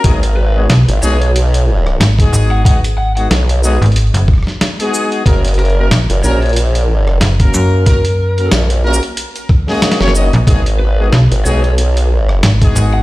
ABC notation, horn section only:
X:1
M:4/4
L:1/16
Q:"Swing 16ths" 1/4=92
K:G#m
V:1 name="Horn section"
[G,B,DFG] z2 [G,B,DFG] z2 [G,B,DFG] z6 [G,B,DFG]3 | [G,B,DFG] z2 [G,B,DFG] z2 [G,B,DFG] z6 [G,B,DFG]3 | [A,CFA] z2 [A,CFA] z2 [A,CFA] z6 [A,CFA]3 | [A,CFA] z2 [A,CFA] z2 [A,CFA] z4 [G,A,CFG]2 [A,CFc] [A,CDFd] z |
[G,B,DFG] z2 [G,B,DFG] z2 [G,B,DFG] z6 [G,B,DFG]3 |]